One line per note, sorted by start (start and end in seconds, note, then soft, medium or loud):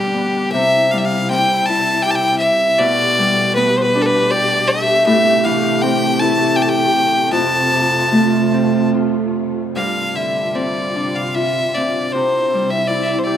0.00 0.57 G2 medium
0.00 0.50 B2 medium
0.00 0.57 D3 soft
0.00 0.50 G3 medium
0.00 0.57 G3 soft
0.00 0.74 A3 medium
0.00 0.13 B3 soft
0.00 0.50 D4 medium
0.00 0.51 G4 medium
0.14 0.60 B3 soft
0.52 2.78 C3 medium
0.52 2.85 C3 medium
0.52 2.78 G3 medium
0.52 2.78 E4 medium
0.52 0.93 E5 medium
0.92 2.85 G3 soft
0.92 1.00 F5 medium
0.98 1.07 E5 medium
1.05 1.30 F5 medium
1.30 2.85 C4 medium
1.30 1.68 G5 medium
1.66 4.30 E4 soft
1.66 2.04 A5 medium
2.02 4.31 G4 soft
2.02 2.12 G5 medium
2.11 2.17 A5 medium
2.16 2.38 G5 loud
2.39 2.80 E5 medium
2.78 5.12 B2 medium
2.78 5.05 B2 medium
2.78 9.69 A3 medium
2.78 7.29 G4 medium
2.78 3.55 D5 loud
3.18 5.12 G3 medium
3.56 5.89 B3 medium
3.56 3.79 B4 medium
3.77 3.84 C5 medium
3.82 4.04 B4 medium
3.95 6.75 D4 medium
4.02 4.08 A4 medium
4.06 4.33 B4 medium
4.31 6.57 G4 medium
4.31 4.69 D5 loud
4.68 5.06 E5 loud
5.06 7.37 A2 medium
5.06 9.69 C3 medium
5.06 5.46 E5 loud
5.44 7.37 E3 medium
5.44 5.84 F5 medium
5.82 8.53 C4 medium
5.82 6.21 G5 medium
6.20 7.37 E4 medium
6.20 6.58 A5 medium
6.56 8.93 G4 medium
6.56 6.64 G5 medium
6.63 6.71 A5 medium
6.70 7.32 G5 medium
7.31 9.78 F2 medium
7.31 9.70 F4 medium
7.31 8.88 A5 medium
7.71 9.78 C3 soft
8.12 11.45 A3 soft
8.54 10.54 C4 soft
8.95 11.35 F4 soft
9.74 12.18 G2 soft
9.74 13.37 C3 medium
9.74 12.11 G3 medium
9.74 12.11 F4 medium
9.74 10.18 F5 medium
10.15 12.18 D3 soft
10.15 10.47 E5 medium
10.47 10.57 E5 soft
10.55 11.76 C4 soft
10.55 11.17 D5 medium
10.95 13.37 D4 soft
11.16 11.37 F5 medium
11.35 12.96 F4 soft
11.35 11.76 E5 medium
11.75 13.37 C4 soft
11.75 12.14 D5 medium
12.12 13.37 C3 medium
12.12 13.37 C4 medium
12.12 13.37 E4 medium
12.12 12.72 C5 medium
12.54 13.37 G3 soft
12.71 12.89 E5 medium
12.88 13.37 E4 soft
12.88 13.04 D5 medium
13.02 13.21 D5 medium
13.02 13.07 E5 soft
13.19 13.25 C5 soft
13.24 13.37 G4 soft
13.24 13.37 D5 medium